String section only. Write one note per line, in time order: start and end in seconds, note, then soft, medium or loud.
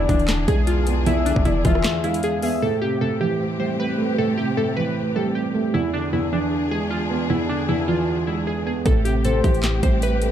0.00 2.59 E3 medium
0.00 2.59 D4 medium
0.00 2.59 G#4 medium
2.62 5.71 A3 medium
2.62 5.71 C4 medium
2.62 5.71 G4 medium
5.74 8.83 E3 medium
5.74 8.83 D4 medium
5.74 8.83 G#4 loud
8.86 10.32 A3 medium
8.86 10.32 C4 medium
8.86 10.32 G4 medium